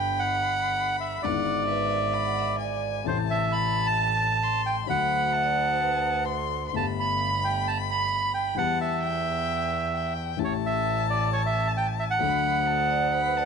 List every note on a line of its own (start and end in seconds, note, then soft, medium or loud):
0.00 1.14 G1 medium
0.00 1.14 G2 medium
0.00 1.13 D3 medium
0.00 1.14 G3 soft
0.00 1.14 B3 soft
0.00 1.15 G4 medium
0.00 0.20 G5 loud
0.00 1.26 B5 medium
0.19 0.96 F#5 loud
1.00 1.22 E5 medium
1.22 2.97 G#1 medium
1.22 2.98 G#1 medium
1.22 2.98 G#2 medium
1.22 2.97 D3 medium
1.22 2.98 G#3 medium
1.22 2.98 B3 soft
1.22 2.99 E4 medium
1.22 2.56 D5 medium
1.22 1.67 F#5 medium
1.68 1.92 B4 medium
1.68 2.15 E5 medium
1.90 2.15 D5 medium
2.13 2.26 E5 medium
2.13 2.58 B5 medium
2.25 2.38 F#5 medium
2.39 2.52 E5 medium
2.53 2.60 E5 medium
2.59 2.92 D5 medium
2.59 3.08 G#5 medium
3.04 4.78 A1 medium
3.04 4.79 A1 medium
3.04 4.79 A2 medium
3.04 4.78 C3 medium
3.04 4.78 E3 medium
3.04 4.79 A3 medium
3.04 3.18 C5 medium
3.04 3.50 A5 loud
3.09 4.80 E4 medium
3.31 3.53 E5 medium
3.50 4.45 A5 loud
3.50 3.87 B5 loud
3.87 4.62 A5 loud
4.43 4.89 C6 medium
4.66 4.76 G5 medium
4.86 6.64 D2 medium
4.86 6.64 D3 medium
4.86 6.64 F#3 medium
4.86 6.65 A3 soft
4.86 6.65 F#4 medium
4.86 6.24 F#5 loud
4.86 5.34 B5 medium
5.33 5.45 E5 medium
5.33 6.27 A5 medium
5.43 5.54 D5 medium
5.68 5.80 C5 medium
5.80 6.28 B4 medium
6.25 6.59 A4 medium
6.25 6.65 C6 medium
6.68 6.76 C6 medium
6.72 8.48 G1 medium
6.72 8.49 G1 medium
6.72 8.49 G2 medium
6.72 8.48 D3 medium
6.72 8.48 A3 soft
6.72 8.49 B3 medium
6.72 6.86 A5 medium
6.72 8.60 B5 medium
6.76 8.50 G4 medium
7.00 7.46 B5 loud
7.44 7.67 G5 medium
7.68 7.78 A5 medium
7.90 8.32 B5 loud
8.34 8.56 G5 medium
8.55 10.30 E2 medium
8.55 10.31 E2 medium
8.55 8.56 E3 medium
8.55 10.31 E3 medium
8.55 10.30 G3 medium
8.55 10.30 B3 medium
8.55 8.79 F#5 loud
8.55 9.03 A5 medium
8.59 10.31 G4 medium
8.81 10.13 E5 medium
9.03 9.91 G5 medium
9.95 10.40 G5 medium
10.37 12.12 A1 medium
10.37 12.13 A1 medium
10.37 12.13 A2 medium
10.37 12.12 E3 medium
10.37 12.12 A3 medium
10.37 12.13 C#4 medium
10.37 12.21 A5 loud
10.41 12.14 G4 medium
10.41 10.53 C#5 medium
10.66 11.06 E5 loud
11.10 11.30 D5 medium
11.33 11.42 C#5 medium
11.46 11.68 E5 medium
11.67 11.72 A5 medium
11.77 11.87 G5 medium
11.99 12.04 E5 medium
12.10 13.45 F#5 medium
12.19 13.45 D2 medium
12.19 13.45 D3 medium
12.19 13.45 F#3 medium
12.19 13.45 A3 medium
12.19 13.45 D4 medium
12.19 13.45 A4 medium
12.19 12.68 B5 medium
12.67 12.89 A4 medium
12.67 13.14 A5 medium
12.90 13.03 D5 medium
13.03 13.27 C5 medium
13.15 13.38 B5 medium
13.27 13.39 B4 medium
13.37 13.45 D5 medium
13.37 13.45 A5 medium